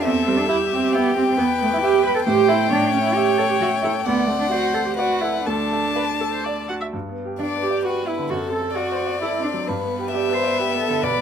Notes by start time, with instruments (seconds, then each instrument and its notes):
0.02 grand piano E2, cello C4, viola A4, violin E5
0.25 grand piano G3, cello C4
0.37 cello D4
0.48 cello E4, viola G4, grand piano E5
0.71 cello C4, grand piano G4
0.93 cello B3, grand piano E5, violin G5
1.16 cello C4, grand piano G4
1.28 cello C4
1.37 grand piano E2, cello B3, viola B4
1.61 cello A3, grand piano B3
1.73 cello E4
1.82 cello G4, grand piano E5
2.05 cello B4, grand piano B4
2.16 cello A4
2.26 grand piano A2, cello G4, viola C5, violin G5
2.48 cello E4, grand piano A4 E5
2.71 grand piano A2, cello D4, viola C#5
2.93 cello C#4, grand piano C#4
3.04 cello E4
3.15 cello G4, grand piano E5
3.38 cello A4, grand piano C#5
3.50 cello G4
3.61 cello F#4, grand piano E5
3.82 cello E4, grand piano A4
4.05 grand piano D2, cello B3, viola D5, violin F#5
4.27 cello A3, grand piano C4
4.40 cello D4
4.51 cello F#4, viola C5, grand piano D5
4.74 cello A4, grand piano C5
4.85 cello G4
4.97 cello F#4, viola B4, grand piano D5, violin F#5
5.21 cello E4, grand piano A4
5.46 grand piano D2, cello D4, viola A4, violin A5
5.72 grand piano A3
5.96 viola B4, grand piano D5
6.20 viola A4, grand piano A4
6.32 viola C5
6.44 viola D5, grand piano D5
6.69 grand piano F#4, viola F#5
6.81 viola E5
6.93 grand piano G2
7.09 grand piano B3
7.25 grand piano G4
7.39 cello D4, viola D4, grand piano D5, violin D5
7.56 grand piano B4
7.61 cello G4, viola G4
7.71 grand piano D5
7.84 cello F#4, viola F#4, grand piano G4, violin B4
8.03 grand piano B3, cello E4
8.08 viola E4
8.18 grand piano D3
8.30 grand piano F#2, viola F#4, cello F#4, violin A4
8.47 grand piano C4
8.53 viola A4, cello A4
8.62 grand piano A4
8.75 viola F#4, cello F#4, violin D5, grand piano D5
8.92 grand piano C5
9.07 grand piano D5
9.22 viola E4, cello E4, grand piano A4
9.38 grand piano C4
9.44 cello D4, viola D4
9.53 grand piano F#3
9.67 grand piano G2, viola B3, violin B4
9.84 grand piano B3
9.99 grand piano G4
10.11 cello G4, grand piano D5, violin E5
10.29 grand piano B4, cello C5
10.44 grand piano D5
10.57 grand piano G4, cello B4
10.74 grand piano B3
10.79 cello A4
10.89 grand piano D3
11.02 grand piano B1, cello B4, violin D5
11.18 grand piano B3